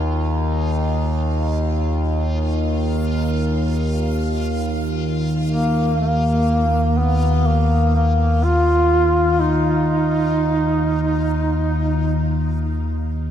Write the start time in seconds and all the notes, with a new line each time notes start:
Already playing: D#2 F4 F5
5.50 A#3
6.01 A#3
6.98 B3
7.47 A#3
7.96 A#3
8.44 F4
9.40 D#4